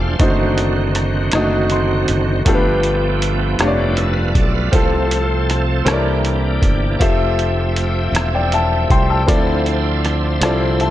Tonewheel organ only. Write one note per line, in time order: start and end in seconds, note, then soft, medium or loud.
0.00 0.16 F3 medium
0.00 0.19 A3 soft
0.00 0.16 D4 soft
0.00 0.37 C5 soft
0.00 0.37 F5 soft
0.19 2.43 D3 soft
0.19 2.42 D#3 medium
0.19 2.43 C4 soft
0.19 2.43 F#4 medium
2.45 4.69 F3 medium
2.45 4.69 A3 soft
2.45 4.69 B3 medium
2.45 3.57 G4 medium
3.77 3.96 D4 soft
3.77 3.96 G4 soft
3.95 4.15 E4 soft
3.95 4.14 A4 medium
4.13 4.33 F4 soft
4.13 4.33 B4 medium
4.33 4.53 A4 soft
4.33 4.52 D5 medium
4.54 4.91 B4 soft
4.54 4.90 F5 soft
4.71 5.86 F3 medium
4.71 5.86 A3 medium
4.71 5.86 C4 soft
4.71 4.79 G4 soft
4.78 5.89 A4 medium
5.85 7.00 E3 medium
5.85 7.00 A#3 medium
5.85 7.00 D4 medium
5.85 7.00 G4 medium
6.99 9.23 F3 medium
6.99 9.23 A3 medium
6.99 7.06 F4 soft
6.99 9.23 E5 soft
7.05 9.26 G4 medium
9.28 10.90 F3 medium
9.28 10.90 D4 soft
9.28 9.34 A#4 soft
9.28 10.90 E5 medium
9.35 10.90 C5 medium